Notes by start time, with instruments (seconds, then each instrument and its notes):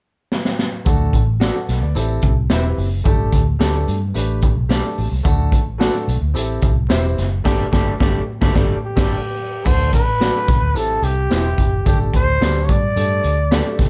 0.32 snare
0.45 snare
0.59 snare
0.85 fingered electric bass D2, grand piano A3 D4 F#4 A4, kick, closed hi-hat, tambourine
1.13 fingered electric bass A1, kick, closed hi-hat
1.40 grand piano D4 F#4, clean electric guitar F#4 A4 D5, snare, closed hi-hat, tambourine
1.55 grand piano F#4 A4
1.69 fingered electric bass B1, snare, closed hi-hat
1.81 fingered electric bass D2, grand piano B4 D5
1.95 fingered electric bass A1, grand piano C4 E4 G4 A4, closed hi-hat, tambourine
2.22 fingered electric bass C2, kick, closed hi-hat
2.50 fingered electric bass E1, grand piano C4 E4 G4 B4, clean electric guitar G4 C5 E5, snare, closed hi-hat, tambourine
2.78 fingered electric bass F#1, open hi-hat
3.04 fingered electric bass G1, grand piano A3 D4 G4 A4, kick, closed hi-hat, tambourine
3.32 fingered electric bass D2, kick, closed hi-hat
3.59 fingered electric bass D2, grand piano A3 D4 G4 A4, clean electric guitar G4 A4 D5, snare, closed hi-hat, tambourine
3.88 fingered electric bass G2, closed hi-hat
4.14 fingered electric bass A1, grand piano A3 D4 G4 B4, closed hi-hat, tambourine
4.42 kick, closed hi-hat
4.56 fingered electric bass B1
4.69 grand piano A3 D4 G4 A4, clean electric guitar G4 A4 D5, snare, closed hi-hat, tambourine
4.98 fingered electric bass A1, open hi-hat
5.12 fingered electric bass C2
5.23 fingered electric bass D2, grand piano A3 D4 F#4 A4, kick, closed hi-hat, tambourine
5.52 fingered electric bass A1, kick, closed hi-hat
5.78 grand piano A3 D4 F#4 A4, clean electric guitar F#4 A4 D5, snare, closed hi-hat, tambourine
6.08 fingered electric bass B1, closed hi-hat
6.21 fingered electric bass D2
6.34 fingered electric bass A1, grand piano C4 E4 G4 A4, closed hi-hat, tambourine
6.61 fingered electric bass C2, kick, closed hi-hat
6.89 fingered electric bass E1, grand piano C4 E4 G4 C5, clean electric guitar G4 C5 E5, snare, closed hi-hat, tambourine
7.18 fingered electric bass F#1, snare, closed hi-hat
7.44 fingered electric bass G1, grand piano A3 D4 G4 A4, clean electric guitar G4 A4 D5, kick, snare, crash
7.71 fingered electric bass G1, grand piano A3 D4 G4 A4, clean electric guitar G4 A4 D5, kick, snare
7.99 fingered electric bass G1, grand piano A3 D4 G4 A4, clean electric guitar G4 A4 D5, kick, snare
8.41 fingered electric bass G1, grand piano A3 D4 G4 A4, clean electric guitar G4 A4 D5, kick, snare
8.54 fingered electric bass G1, grand piano A3 D4 G4 A4, clean electric guitar G4 A4 D5, kick, snare
8.85 trumpet G4
8.96 fingered electric bass G1, grand piano A3 D4 G4 A4, clean electric guitar G4 A4 D5, kick, snare, crash
9.13 trumpet G4
9.64 fingered electric bass D2, grand piano A3 D4 F#4 A4, trumpet C5, kick, crash, tambourine
9.93 fingered electric bass A1, trumpet B4, kick, closed hi-hat
10.20 grand piano A3 D4 F#4 B4, clean electric guitar F#4 A4 D5, snare, closed hi-hat, tambourine
10.48 fingered electric bass B1, kick, snare, closed hi-hat
10.62 fingered electric bass D2
10.74 fingered electric bass A1, grand piano C4 E4 G4 A4, trumpet A4, closed hi-hat, tambourine
11.02 fingered electric bass C2, trumpet G4, closed hi-hat
11.30 fingered electric bass E1, grand piano C4 E4 G4 C5, clean electric guitar E4 G4 C5, snare, closed hi-hat, tambourine
11.58 fingered electric bass F#1, kick, closed hi-hat
11.85 fingered electric bass G1, grand piano A3 D4 G4 A4, trumpet G4, kick, closed hi-hat, tambourine
12.13 fingered electric bass D2, trumpet C5, kick, closed hi-hat
12.40 fingered electric bass D2, grand piano A3 D4 G4 B4, clean electric guitar G4 A4 D5, snare, closed hi-hat, tambourine
12.65 trumpet C#5
12.69 fingered electric bass G2, trumpet D5, kick, closed hi-hat
12.96 fingered electric bass G2, grand piano A3 D4 G4 A4, closed hi-hat, tambourine
13.23 fingered electric bass D2, closed hi-hat
13.51 grand piano A3 D4 G4 A4, clean electric guitar G4 A4 D5, snare, closed hi-hat, tambourine
13.79 fingered electric bass C2, kick, snare, closed hi-hat